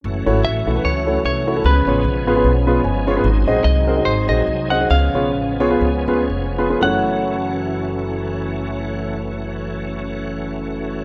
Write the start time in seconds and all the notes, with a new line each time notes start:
0.04 F#1 E3 F#3 A3 C#4 F#4
0.26 G#1 A3 E4 F#4 C#5
0.44 A1 E5
0.67 B1 A3 E4 F#4 E5
0.75 A3 E4 F#4 B4
0.84 C#2 C#5
1.07 A3 E4 F#4 C#5
1.24 C2 C#5
1.47 A3 E4 F#4 C#5
1.56 A3 E4 F#4 A4
1.64 C#2 C#3 F3 G#3 B3 G#4 B4
1.86 A1 B3 F4 G#4 C#5
2.04 B1
2.26 G#1 B3 F4 G#4 B4
2.36 B3 F4 G#4 B4
2.44 B1
2.67 B3 F4 G#4 B4
2.84 G1 G#5
3.07 B3 F4 G#4 C#5 F5
3.16 B3 F4 G#4 B4
3.24 G#1 G#2 F#3 C4 D#4
3.46 A#1 C4 F#4 G#4 D#5
3.64 C2 D#5
3.87 C4 F#4 G#4 A#4
3.97 C4 F#4 G#4 D#5
4.05 G#1 C5
4.28 A#1 C4 F#4 G#4 C5 D#5
4.47 C2
4.70 C4 F#4 G#4 D#5 F#5
4.81 C4 F#4 G#4 D#5
4.90 C#2 C#3 F3 G#3 B3 C#4 F5
5.14 B1 B3 F4 G#4 C#5
5.34 A1
5.60 B1 B3 F4 G#4 C#5
5.70 B3 F4 G#4 B4
5.81 C#2
6.08 D2 B3 F4 G#4 B4
6.30 F1
6.58 B3 F4 G#4 B4
6.70 B3 F4 G#4 B4
6.80 F#1 F#2 E3 F#3 A3 C#4 E4 F#4 F#5
6.84 C#5